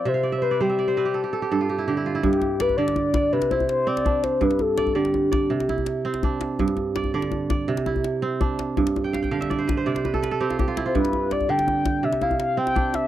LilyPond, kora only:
<<
  \new Staff \with { instrumentName = "Kora" } { \time 12/8 \key c \major \tempo 4. = 110 e''16 f''16 d''16 e''16 c''16 d''16 c''16 e''16 d''16 c''16 b'16 g'16 a'16 g'16 a'16 g'16 a'16 f'16 g'16 e'16 g'16 e'16 f'16 e'16~ | e'16 r8. d''8 d''4 d''4 e'4. d'4~ | d'8 r8 d''8 d''4 d''4 e'4. d'4~ | d'8 r8 d''8 d''4 d''4 e'4. d'4~ |
d'8 r16 g''16 f''16 g''16 f''16 e''16 d''16 c''16 b'16 c''16 d''16 c''16 b'16 a'16 b'16 a'16 g'16 f'16 g'16 f'16 e'16 f'16~ | f'16 r8. d''4. r4 e'4. d'4 | }
  \new Staff \with { instrumentName = "Kora" } { \clef bass \time 12/8 \key c \major c4 r8 g4 c'8 r4 g,4 d4 | g,4 r8 d4 r8 c4 r8 c'4 r8 | g,4 r8 d4 r8 c4 r8 c'4 r8 | g,4 r8 d4 r8 c4 r8 c'4 r8 |
g,4 r8 d4 r8 c4 r8 c'4 r8 | g,4 r8 d4 r8 c4 r8 c'4 r8 | }
>>